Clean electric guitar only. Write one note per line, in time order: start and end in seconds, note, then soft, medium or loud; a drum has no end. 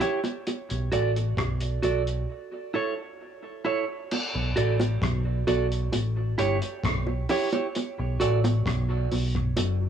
0.00 0.19 E4 medium
0.00 0.19 G4 medium
0.00 0.20 C#5 medium
0.92 1.10 F#4 medium
0.92 1.11 A4 medium
0.92 1.11 D5 medium
1.82 2.01 F#4 medium
1.82 2.02 A4 medium
1.82 2.02 D5 medium
2.74 2.92 E4 medium
2.74 2.93 A4 medium
2.74 2.93 C#5 medium
3.65 3.83 E4 medium
3.65 3.84 A4 medium
3.65 3.84 C#5 medium
4.56 4.75 F#4 medium
4.56 4.75 A4 medium
4.56 4.76 D5 medium
5.47 5.66 F#4 medium
5.47 5.66 A4 medium
5.47 5.67 D5 medium
6.38 6.57 E4 medium
6.38 6.57 G4 medium
6.38 6.57 C#5 loud
6.63 muted clean electric guitar stroke soft
7.29 7.48 E4 medium
7.29 7.48 G4 loud
7.29 7.49 C#5 loud
7.53 7.67 E4 soft
7.53 7.67 G4 medium
7.53 7.66 C#5 medium
8.20 8.39 F#4 medium
8.20 8.39 A4 medium
8.20 8.39 D5 medium